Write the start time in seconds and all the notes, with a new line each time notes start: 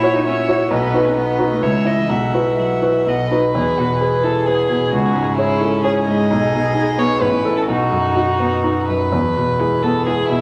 Already playing: A#2 E4 F#4 C#5 E5
0.03 E4 F#4 C#5
0.15 D#4
0.25 C#4 C#5 E5
0.48 E4 F#4 C#5
0.71 B1 B3 B4 D#5
0.94 D#4 F#4 B4
1.05 C#4
1.15 B3 B4 D#5
1.38 D#4 F#4 B4
1.50 A3
1.61 C#2 G#3 C#5 E5
1.85 E4 D#5 E5
1.98 E3
2.09 B1 G#3 E5 F#5
2.34 E4 F#4 B4
2.58 F#3 E5 F#5
2.82 E4 F#4 B4
3.07 B1 D#5 F#5
3.31 D#4 F#4 B4
3.55 E2 G#4
3.78 B2 F#4
4.01 G#3 G#4 B4
4.24 E4 A4
4.46 B3 G#4 B4
4.69 B2
4.92 C#2 C#4 F#4
5.15 G#2
5.38 E4 G#4 C#5
5.61 E4 A4
5.84 G#4 C#5
6.08 G#2 D#5
6.31 B1 D#4 G#4
6.53 B2
6.75 B3 D#4 G#4
6.98 B3 C#5
7.21 A1 C#4 E4 B4
7.45 E4 A4
7.57 A4
7.68 B1 D#4 F#4
7.91 F#2
8.15 D#4 F#4
8.39 B3
8.64 D#4 F#4
8.89 F#2 B4
9.12 E2
9.36 B2
9.60 G#3 B3 E4 G#4
9.83 B3 A4
10.06 G#3 E4 G#4
10.29 B2 E4